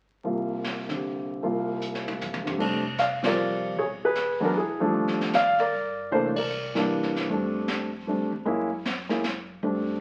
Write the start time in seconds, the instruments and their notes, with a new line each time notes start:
0.24 grand piano C2 C3 A#3 F4, brush sweep, kick
0.64 snare, hi-hat pedal
0.89 grand piano D3 C4 G4, snare
1.43 grand piano C2 C3 A#3 F4, brush sweep, kick
1.81 hi-hat pedal
1.95 snare
2.08 mid tom
2.21 floor tom, hi-hat pedal
2.34 floor tom
2.44 grand piano D3 C4 G4, floor tom
2.58 upright bass F1, grand piano G3 A3 C4 D4, brush sweep, kick, crash
2.98 grand piano D5 F5, snare, hi-hat pedal
3.23 grand piano F3 G3 C4 F4 A#4 D5, snare, ride
3.77 upright bass E1, grand piano G#4 C#5, brush sweep, kick
4.05 grand piano G#4 B4
4.15 snare, hi-hat pedal
4.40 grand piano F#3 G#3 B3 D4
4.45 grand piano F#4 A#4
4.57 grand piano E4 G#4
4.80 grand piano F3 G3 A3 D4
4.94 upright bass D#2, brush sweep, kick
5.07 snare
5.21 snare
5.33 grand piano D5 F5, snare, hi-hat pedal
5.58 grand piano A#4 D5, snare
5.72 upright bass G2
6.11 upright bass C2, grand piano E3 A3 A#3 D4 A4 C5, brush sweep, kick
6.26 grand piano C#5
6.36 grand piano A#4 D5, kick, ride
6.50 hi-hat pedal
6.75 grand piano E3 G3 A#3 D4, snare
7.03 snare
7.16 snare
7.29 upright bass F2, grand piano G3 A3 C4 D4, brush sweep, kick
7.68 snare, hi-hat pedal
8.07 grand piano G3 A3 C4 D4
8.32 upright bass E2
8.45 upright bass F#2, grand piano G#3 A#3 C#4 E4, brush sweep, kick
8.85 snare, hi-hat pedal
9.09 grand piano G#3 A#3 C#4 E4, snare
9.24 snare, hi-hat pedal
9.63 upright bass F2, grand piano G3 A3 C4 D4, brush sweep, kick